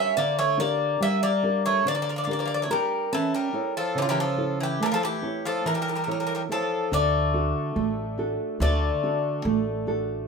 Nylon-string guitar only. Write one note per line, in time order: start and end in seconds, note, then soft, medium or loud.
0.00 0.14 G3 medium
0.00 0.42 D4 medium
0.00 0.42 G4 medium
0.00 0.42 A#4 medium
0.17 0.99 D3 medium
0.57 1.26 D4 medium
0.57 1.26 G4 soft
0.57 1.26 A#4 medium
1.00 1.83 G3 medium
1.43 2.11 D4 soft
1.43 2.11 G4 soft
1.43 2.11 A#4 medium
1.85 2.67 D3 medium
2.27 2.69 D4 medium
2.27 2.69 G4 soft
2.27 2.69 A#4 medium
2.70 3.04 D4 medium
2.70 3.04 G4 soft
2.70 3.04 A#4 medium
3.12 3.53 C#4 medium
3.53 4.21 E4 medium
3.53 4.22 A4 medium
3.53 4.22 C#5 medium
3.95 4.78 C#3 medium
4.38 5.06 E4 medium
4.38 5.06 A4 soft
4.38 5.06 C#5 medium
4.80 5.62 A3 medium
5.22 5.90 E4 soft
5.22 5.90 A4 soft
5.22 5.91 C#5 medium
5.65 6.47 E3 medium
6.07 6.48 E4 medium
6.07 6.49 A4 soft
6.07 6.49 C#5 medium
6.49 6.83 E4 medium
6.49 6.84 A4 soft
6.49 6.84 C#5 medium
6.91 7.73 D3 medium
7.33 8.01 D4 medium
7.33 8.01 F#4 soft
7.33 8.01 A4 medium
7.76 8.58 A3 medium
8.18 8.85 D4 medium
8.18 8.86 F#4 soft
8.18 8.86 A4 medium
8.61 9.42 D3 medium
9.03 9.70 D4 medium
9.03 9.70 F#4 soft
9.03 9.71 A4 medium
9.45 10.27 A3 medium
9.87 10.27 D4 medium
9.87 10.28 F#4 medium
9.87 10.28 A4 medium